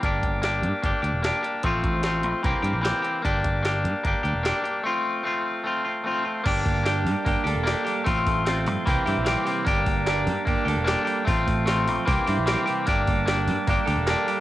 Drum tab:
CC |--------|--------|--------|--------|
HH |xxxxxxxx|xxxxxxxx|xxxxxxxx|--------|
SD |--o---o-|--o---o-|--o---o-|--------|
BD |oo--o---|oo--o---|oo--o---|--------|

CC |x-------|--------|--------|--------|
HH |oooooooo|oooooooo|oooooooo|oooooooo|
SD |--o---o-|--o---o-|--o---o-|--o---o-|
BD |oo--o---|oo--o---|oo--o---|oo--o---|

CC |--------|
HH |oooooooo|
SD |--o---o-|
BD |oo--o---|